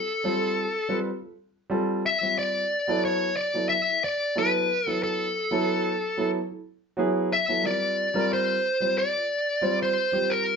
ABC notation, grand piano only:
X:1
M:4/4
L:1/16
Q:"Swing 16ths" 1/4=91
K:Ephr
V:1 name="Grand piano"
z [G,CFA]2 z2 [G,CFB] z [FA] z2 [G,CFA]2 z [G,CFG]2 z | z [^F,B,EA]2 z2 [F,B,EA] z [EA] z2 [F,B,EA]2 z [F,B,EB]2 z | z [^F,B,EA]2 z2 [F,B,EA] z [EA] z2 [F,B,E^G]2 z [F,B,EA] [=G,C=F_B]2 | z [G,CF_B]2 z2 [G,CFc] z [FB] z2 [G,CFc]2 z [G,CFG]2 z |]